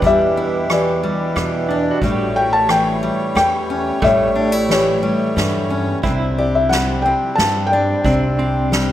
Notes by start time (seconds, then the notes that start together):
Already playing: B2 E3 D4 E4 G4 A4 B4 D5 E5
0.02 E2 G3, kick, ride
0.06 G4 E5
0.37 E4
0.69 E3 G4 D5, cross-stick, ride
1.03 G3
1.36 E2 B2, cross-stick, ride
1.69 D4, ride
1.91 F#4
2.01 A1 A2 G3 A3 C#5, kick, ride
2.12 G4
2.36 E4 G5
2.53 A5
2.68 E3 G5, cross-stick, ride
3.03 G3
3.35 E2 G5, cross-stick, ride
3.69 C#4, ride
4.02 A1 A2 G3 A3 C#5 E5, kick, ride
4.35 D4
4.52 E4
4.69 E3 G4 C#5, snare, ride
5.03 G3
5.36 E2 G2, snare, ride
5.70 C#4, ride
6.03 C2 C3 C4 D4 E4, kick, ride
6.38 G4 D5
6.55 E5
6.69 G3 F#5, snare, ride
7.02 C4 G5
7.35 G2 A5, snare
7.67 G5
7.71 D4 D5, ride
8.04 C2 C3 C4 D4, kick, ride
8.39 C4 G4
8.71 G3, snare, ride